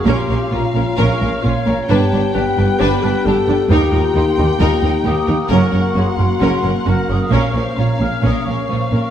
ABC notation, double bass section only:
X:1
M:4/4
L:1/8
Q:1/4=132
K:Bbdor
V:1 name="Double bass section" clef=bass
B,,, B,,, B,,, B,,, B,,, B,,, B,,, B,,, | G,,, G,,, G,,, G,,, G,,, G,,, G,,, G,,, | E,, E,, E,, E,, E,, E,, E,, E,, | _G,,, G,,, G,,, G,,, G,,, G,,, G,,, G,,, |
B,,, B,,, B,,, B,,, B,,, B,,, B,,, B,,, |]